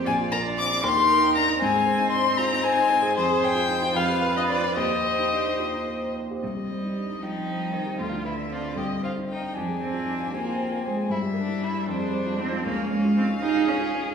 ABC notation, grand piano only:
X:1
M:6/8
L:1/16
Q:3/8=77
K:Cm
V:1 name="Grand piano"
B,,, F B D C D E,, G B E D E | A,, A c E D E F E c E c A | F,, A c F E F F,, G =B D C D | E,, G c E D E F E c E c G |
C,, G c E2 E F E c E c G | D,, F =B D C D C,, G c E D E | F,, A c F E F G F c F c A | G,, G B =E D E F,, A c F _E F |
[K:Dblyd] D,, A d F E F G F d F d A |]